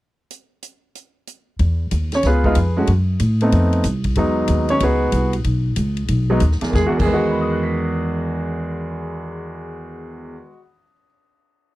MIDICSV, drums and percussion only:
0, 0, Header, 1, 2, 480
1, 0, Start_track
1, 0, Key_signature, 4, "major"
1, 0, Tempo, 321371
1, 456, Time_signature, 4, 2, 24, 8
1, 17550, End_track
2, 0, Start_track
2, 0, Title_t, "Drums"
2, 455, Note_on_c, 9, 42, 52
2, 604, Note_off_c, 9, 42, 0
2, 933, Note_on_c, 9, 42, 51
2, 1082, Note_off_c, 9, 42, 0
2, 1422, Note_on_c, 9, 42, 50
2, 1572, Note_off_c, 9, 42, 0
2, 1900, Note_on_c, 9, 42, 48
2, 2050, Note_off_c, 9, 42, 0
2, 2377, Note_on_c, 9, 51, 44
2, 2381, Note_on_c, 9, 36, 16
2, 2526, Note_off_c, 9, 51, 0
2, 2530, Note_off_c, 9, 36, 0
2, 2854, Note_on_c, 9, 44, 51
2, 2854, Note_on_c, 9, 51, 53
2, 2861, Note_on_c, 9, 36, 21
2, 3003, Note_off_c, 9, 44, 0
2, 3003, Note_off_c, 9, 51, 0
2, 3010, Note_off_c, 9, 36, 0
2, 3164, Note_on_c, 9, 51, 37
2, 3172, Note_on_c, 9, 38, 37
2, 3313, Note_off_c, 9, 51, 0
2, 3321, Note_off_c, 9, 38, 0
2, 3329, Note_on_c, 9, 51, 46
2, 3336, Note_on_c, 9, 38, 33
2, 3340, Note_on_c, 9, 36, 21
2, 3478, Note_off_c, 9, 51, 0
2, 3486, Note_off_c, 9, 38, 0
2, 3489, Note_off_c, 9, 36, 0
2, 3648, Note_on_c, 9, 36, 45
2, 3797, Note_off_c, 9, 36, 0
2, 3809, Note_on_c, 9, 44, 47
2, 3809, Note_on_c, 9, 51, 60
2, 3819, Note_on_c, 9, 36, 16
2, 3959, Note_off_c, 9, 44, 0
2, 3959, Note_off_c, 9, 51, 0
2, 3968, Note_off_c, 9, 36, 0
2, 4291, Note_on_c, 9, 51, 50
2, 4300, Note_on_c, 9, 36, 20
2, 4441, Note_off_c, 9, 51, 0
2, 4449, Note_off_c, 9, 36, 0
2, 4773, Note_on_c, 9, 44, 45
2, 4773, Note_on_c, 9, 51, 55
2, 4783, Note_on_c, 9, 36, 18
2, 4923, Note_off_c, 9, 44, 0
2, 4923, Note_off_c, 9, 51, 0
2, 4932, Note_off_c, 9, 36, 0
2, 5086, Note_on_c, 9, 51, 38
2, 5235, Note_off_c, 9, 51, 0
2, 5261, Note_on_c, 9, 51, 56
2, 5263, Note_on_c, 9, 36, 19
2, 5411, Note_off_c, 9, 51, 0
2, 5413, Note_off_c, 9, 36, 0
2, 5566, Note_on_c, 9, 51, 38
2, 5715, Note_off_c, 9, 51, 0
2, 5731, Note_on_c, 9, 44, 62
2, 5731, Note_on_c, 9, 51, 55
2, 5739, Note_on_c, 9, 36, 20
2, 5880, Note_off_c, 9, 44, 0
2, 5880, Note_off_c, 9, 51, 0
2, 5889, Note_off_c, 9, 36, 0
2, 6034, Note_on_c, 9, 51, 44
2, 6047, Note_on_c, 9, 36, 41
2, 6183, Note_off_c, 9, 51, 0
2, 6196, Note_off_c, 9, 36, 0
2, 6206, Note_on_c, 9, 51, 48
2, 6218, Note_on_c, 9, 36, 24
2, 6355, Note_off_c, 9, 51, 0
2, 6368, Note_off_c, 9, 36, 0
2, 6685, Note_on_c, 9, 44, 45
2, 6685, Note_on_c, 9, 51, 60
2, 6697, Note_on_c, 9, 36, 16
2, 6835, Note_off_c, 9, 44, 0
2, 6835, Note_off_c, 9, 51, 0
2, 6847, Note_off_c, 9, 36, 0
2, 7000, Note_on_c, 9, 51, 41
2, 7149, Note_off_c, 9, 51, 0
2, 7175, Note_on_c, 9, 51, 59
2, 7178, Note_on_c, 9, 36, 21
2, 7324, Note_off_c, 9, 51, 0
2, 7328, Note_off_c, 9, 36, 0
2, 7648, Note_on_c, 9, 44, 54
2, 7648, Note_on_c, 9, 51, 61
2, 7656, Note_on_c, 9, 36, 22
2, 7797, Note_off_c, 9, 44, 0
2, 7797, Note_off_c, 9, 51, 0
2, 7806, Note_off_c, 9, 36, 0
2, 7962, Note_on_c, 9, 51, 42
2, 8112, Note_off_c, 9, 51, 0
2, 8131, Note_on_c, 9, 51, 46
2, 8135, Note_on_c, 9, 36, 19
2, 8280, Note_off_c, 9, 51, 0
2, 8285, Note_off_c, 9, 36, 0
2, 8603, Note_on_c, 9, 44, 47
2, 8603, Note_on_c, 9, 51, 57
2, 8614, Note_on_c, 9, 36, 15
2, 8752, Note_off_c, 9, 44, 0
2, 8752, Note_off_c, 9, 51, 0
2, 8763, Note_off_c, 9, 36, 0
2, 8912, Note_on_c, 9, 51, 37
2, 9062, Note_off_c, 9, 51, 0
2, 9087, Note_on_c, 9, 51, 56
2, 9093, Note_on_c, 9, 36, 19
2, 9236, Note_off_c, 9, 51, 0
2, 9243, Note_off_c, 9, 36, 0
2, 9560, Note_on_c, 9, 44, 51
2, 9560, Note_on_c, 9, 51, 56
2, 9572, Note_on_c, 9, 36, 23
2, 9710, Note_off_c, 9, 44, 0
2, 9710, Note_off_c, 9, 51, 0
2, 9722, Note_off_c, 9, 36, 0
2, 9728, Note_on_c, 9, 38, 26
2, 9873, Note_on_c, 9, 51, 44
2, 9877, Note_off_c, 9, 38, 0
2, 9904, Note_on_c, 9, 38, 41
2, 10022, Note_off_c, 9, 51, 0
2, 10054, Note_off_c, 9, 38, 0
2, 10058, Note_on_c, 9, 36, 45
2, 10068, Note_on_c, 9, 38, 53
2, 10207, Note_off_c, 9, 36, 0
2, 10218, Note_off_c, 9, 38, 0
2, 10448, Note_on_c, 9, 36, 55
2, 10451, Note_on_c, 9, 49, 58
2, 10598, Note_off_c, 9, 36, 0
2, 10600, Note_off_c, 9, 49, 0
2, 17550, End_track
0, 0, End_of_file